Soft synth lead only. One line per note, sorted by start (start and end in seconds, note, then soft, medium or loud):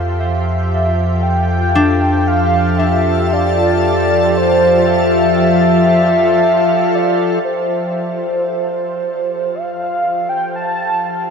0.00 0.21 F5 loud
0.19 1.22 E5 loud
1.23 2.29 G5 loud
2.28 2.80 F5 loud
2.78 3.35 E5 medium
3.33 4.39 D5 loud
4.37 4.86 C5 medium
4.87 6.97 E5 loud
6.95 7.43 D5 medium
7.44 9.56 C5 medium
9.54 10.31 F5 medium
10.29 10.55 G5 medium
10.56 11.30 A5 loud